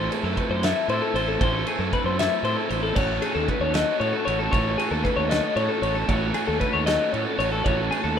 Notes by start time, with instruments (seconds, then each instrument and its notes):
Already playing: overdriven electric guitar A3 C4 E4 A4, clean electric guitar C5
0.11 overdriven electric guitar C4 E4 A4, clean electric guitar G#4, ride
0.23 fingered electric bass F#2, clean electric guitar A4
0.37 clean electric guitar B4, kick, ride
0.49 fingered electric bass F#2, clean electric guitar C5
0.63 overdriven electric guitar A3 C4 E4 A4, clean electric guitar E5, snare, ride
0.88 fingered electric bass A2, overdriven electric guitar A3 C4 E4, clean electric guitar C5, ride
0.93 overdriven electric guitar A4
1.02 clean electric guitar A4
1.14 fingered electric bass A1, overdriven electric guitar E4 A4, clean electric guitar C5, ride
1.19 overdriven electric guitar C4
1.28 clean electric guitar A4
1.41 fingered electric bass A1, overdriven electric guitar A3 C4 E4 A4, clean electric guitar C5, kick, ride
1.67 overdriven electric guitar E4 A4, clean electric guitar G#4, ride
1.71 overdriven electric guitar C4
1.79 fingered electric bass F#2, clean electric guitar A4
1.93 clean electric guitar B4, kick, ride
2.04 fingered electric bass F#2, clean electric guitar C5
2.19 overdriven electric guitar A3 C4 E4 A4, clean electric guitar E5, snare, ride
2.43 fingered electric bass A2, overdriven electric guitar A3 C4, clean electric guitar C5, ride
2.47 overdriven electric guitar E4 A4
2.57 clean electric guitar A4
2.69 fingered electric bass A1, overdriven electric guitar E4 A4, clean electric guitar C5, ride
2.74 overdriven electric guitar C4
2.83 clean electric guitar A4
2.95 fingered electric bass A1, overdriven electric guitar A3 C#4 F#4 A4, clean electric guitar C#5, kick, crash
3.22 overdriven electric guitar C#4 F#4 A4, clean electric guitar G#4, ride
3.35 fingered electric bass D#2, clean electric guitar A4
3.48 clean electric guitar B4, kick, ride
3.60 fingered electric bass D#2, clean electric guitar C#5
3.74 overdriven electric guitar A3 C#4 F#4 A4, clean electric guitar D#5, snare, ride
4.00 fingered electric bass A2, overdriven electric guitar A3 C#4 F#4 A4, clean electric guitar C#5, ride
4.13 clean electric guitar A4
4.25 fingered electric bass A1, overdriven electric guitar C#4 F#4 A4, clean electric guitar C#5, ride
4.39 clean electric guitar A4
4.52 fingered electric bass A1, overdriven electric guitar A3 C#4 F#4 A4, clean electric guitar C#5, kick, ride
4.78 overdriven electric guitar C#4 F#4 A4, clean electric guitar G#4, ride
4.91 fingered electric bass D#2, clean electric guitar A4
5.04 clean electric guitar B4, kick, ride
5.17 fingered electric bass D#2, clean electric guitar C#5
5.29 overdriven electric guitar A3 C#4 F#4 A4, clean electric guitar D#5, snare, ride
5.56 fingered electric bass A2, overdriven electric guitar A3 C#4 F#4 A4, clean electric guitar C#5, ride
5.69 clean electric guitar A4
5.82 fingered electric bass A1, overdriven electric guitar C#4 F#4 A4, clean electric guitar C#5, ride
5.95 clean electric guitar A4
6.08 fingered electric bass A1, overdriven electric guitar A3 C#4 F#4 A4, clean electric guitar C#5, kick, ride
6.34 overdriven electric guitar C#4 F#4 A4, clean electric guitar G#4, ride
6.47 fingered electric bass D#2, clean electric guitar A4
6.60 clean electric guitar B4, kick, ride
6.73 fingered electric bass D#2, clean electric guitar C#5
6.86 overdriven electric guitar A3 C#4 F#4 A4, clean electric guitar D#5, snare, ride
7.12 fingered electric bass A2, overdriven electric guitar A3 C#4 F#4, clean electric guitar C#5, ride
7.17 overdriven electric guitar A4
7.25 clean electric guitar A4
7.38 fingered electric bass A1, overdriven electric guitar C#4 F#4 A4, clean electric guitar C#5, ride
7.52 clean electric guitar A4
7.64 fingered electric bass A1, overdriven electric guitar A3 C#4 F#4 A4, clean electric guitar C#5, kick, ride
7.91 overdriven electric guitar C#4 F#4 A4, clean electric guitar G#4, ride
8.04 fingered electric bass D#2, clean electric guitar A4